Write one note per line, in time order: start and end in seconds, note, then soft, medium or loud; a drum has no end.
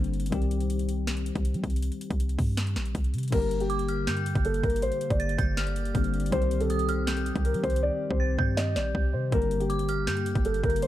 0.00 0.31 G1 loud
0.00 0.32 D3 medium
0.00 0.30 G3 medium
0.00 0.33 A#3 medium
0.00 0.32 C4 medium
0.04 closed hi-hat medium
0.14 closed hi-hat soft
0.20 closed hi-hat medium
0.26 closed hi-hat medium
0.30 1.31 C2 loud
0.30 3.27 D#3 medium
0.30 3.28 G3 medium
0.30 3.29 C4 medium
0.30 kick loud
0.30 closed hi-hat medium
0.34 3.29 G4 medium
0.42 closed hi-hat soft
0.51 closed hi-hat medium
0.60 closed hi-hat medium
0.70 closed hi-hat medium
0.79 closed hi-hat medium
0.89 closed hi-hat medium
1.07 snare loud
1.07 closed hi-hat medium
1.17 closed hi-hat medium
1.26 closed hi-hat medium
1.35 1.56 C2 loud
1.35 kick loud
1.35 closed hi-hat medium
1.45 closed hi-hat medium
1.54 1.63 G3 loud
1.54 closed hi-hat medium
1.64 1.91 C2 loud
1.64 kick medium
1.64 closed hi-hat soft
1.70 closed hi-hat medium
1.76 closed hi-hat medium
1.82 closed hi-hat medium
1.92 closed hi-hat soft
2.01 closed hi-hat medium
2.10 2.37 C2 loud
2.10 kick medium
2.10 closed hi-hat medium
2.20 closed hi-hat medium
2.29 closed hi-hat medium
2.39 2.78 G2 loud
2.39 kick medium
2.39 open hi-hat medium
2.57 snare loud
2.57 closed hi-hat medium
2.67 closed hi-hat medium
2.76 2.94 A#1 loud
2.76 snare medium
2.76 closed hi-hat medium
2.85 closed hi-hat medium
2.95 3.15 C2 loud
2.95 kick medium
2.95 closed hi-hat medium
3.04 closed hi-hat medium
3.13 3.31 C3 loud
3.13 closed hi-hat medium
3.18 closed hi-hat medium
3.23 closed hi-hat medium
3.28 5.90 D3 medium
3.28 5.90 G3 medium
3.28 closed hi-hat medium
3.32 4.09 G1 loud
3.32 6.29 D3 medium
3.32 6.29 A#3 medium
3.32 5.91 A#3 medium
3.32 10.87 G4 medium
3.32 5.92 G4 medium
3.32 3.59 A#4 loud
3.32 kick loud
3.32 closed hi-hat medium
3.32 crash loud
3.42 closed hi-hat medium
3.51 closed hi-hat medium
3.60 4.41 G4 medium
3.60 closed hi-hat medium
3.70 3.88 D6 medium
3.70 closed hi-hat medium
3.79 closed hi-hat medium
3.89 4.06 F6 medium
3.89 closed hi-hat medium
4.07 4.34 G2 loud
4.07 4.78 G6 medium
4.07 snare loud
4.07 closed hi-hat medium
4.17 closed hi-hat medium
4.26 closed hi-hat medium
4.35 4.62 G1 loud
4.35 kick loud
4.35 closed hi-hat medium
4.45 4.62 A4 medium
4.45 closed hi-hat medium
4.54 closed hi-hat medium
4.63 4.84 G1 loud
4.63 4.81 A#4 medium
4.63 kick medium
4.63 closed hi-hat soft
4.70 closed hi-hat medium
4.76 closed hi-hat medium
4.82 4.91 A1 loud
4.82 5.09 C5 loud
4.82 closed hi-hat medium
4.92 closed hi-hat soft
5.01 closed hi-hat medium
5.10 5.37 G1 loud
5.10 6.28 D5 medium
5.10 kick loud
5.10 closed hi-hat medium
5.20 5.38 A6 medium
5.20 closed hi-hat medium
5.29 closed hi-hat medium
5.38 5.93 G1 loud
5.38 5.56 G6 medium
5.38 kick loud
5.38 closed hi-hat medium
5.57 6.28 F6 medium
5.57 snare loud
5.57 closed hi-hat medium
5.67 closed hi-hat medium
5.76 closed hi-hat medium
5.85 closed hi-hat medium
5.94 6.31 G1 loud
5.94 6.32 D3 medium
5.94 6.30 G3 medium
5.94 6.33 A#3 medium
5.94 6.32 C4 medium
5.94 kick medium
5.94 closed hi-hat medium
6.04 closed hi-hat medium
6.14 closed hi-hat soft
6.20 closed hi-hat medium
6.26 closed hi-hat medium
6.30 7.31 C2 loud
6.30 9.27 D#3 medium
6.30 9.29 D#3 medium
6.30 9.28 G3 medium
6.30 9.29 C4 medium
6.30 6.59 C5 loud
6.30 kick loud
6.30 closed hi-hat medium
6.34 9.29 G4 medium
6.42 closed hi-hat soft
6.51 closed hi-hat medium
6.60 7.41 A4 medium
6.60 closed hi-hat medium
6.70 6.88 D#6 medium
6.70 closed hi-hat medium
6.79 closed hi-hat medium
6.89 7.06 F6 medium
6.89 closed hi-hat medium
7.07 7.78 G6 medium
7.07 snare loud
7.07 closed hi-hat medium
7.17 closed hi-hat medium
7.26 closed hi-hat medium
7.36 7.56 C2 loud
7.36 kick loud
7.36 closed hi-hat medium
7.45 7.62 A#4 medium
7.45 closed hi-hat medium
7.54 7.63 G3 loud
7.54 closed hi-hat medium
7.63 7.91 C2 loud
7.63 7.81 C5 medium
7.63 kick medium
7.63 closed hi-hat soft
7.70 closed hi-hat medium
7.76 closed hi-hat medium
7.83 8.09 D5 loud
8.10 8.37 C2 loud
8.10 8.54 C5 medium
8.10 kick loud
8.20 8.38 A6 medium
8.38 8.78 G2 loud
8.38 9.28 G6 medium
8.38 kick loud
8.57 8.74 D#5 medium
8.57 snare loud
8.75 8.94 A#1 loud
8.75 9.11 D5 medium
8.75 snare medium
8.95 9.15 C2 loud
8.95 kick medium
9.13 9.31 C3 loud
9.13 9.31 C5 medium
9.30 10.09 G1 loud
9.30 10.87 D3 medium
9.30 10.87 G3 medium
9.30 10.87 A#3 medium
9.30 9.59 A#4 loud
9.30 kick loud
9.30 closed hi-hat medium
9.34 10.87 G4 medium
9.42 closed hi-hat soft
9.51 closed hi-hat medium
9.60 10.41 G4 medium
9.60 closed hi-hat medium
9.70 9.88 D6 medium
9.70 closed hi-hat medium
9.79 closed hi-hat medium
9.89 10.06 F6 medium
9.89 closed hi-hat medium
10.07 10.34 G2 loud
10.07 10.78 G6 medium
10.07 snare loud
10.07 closed hi-hat medium
10.17 closed hi-hat medium
10.26 closed hi-hat medium
10.35 10.62 G1 loud
10.35 kick loud
10.35 closed hi-hat medium
10.45 10.62 A4 medium
10.45 closed hi-hat medium
10.54 closed hi-hat medium
10.63 10.82 G1 loud
10.63 10.81 A#4 medium
10.63 kick medium
10.63 closed hi-hat soft
10.70 closed hi-hat medium
10.76 closed hi-hat medium
10.82 10.87 C5 loud
10.82 closed hi-hat medium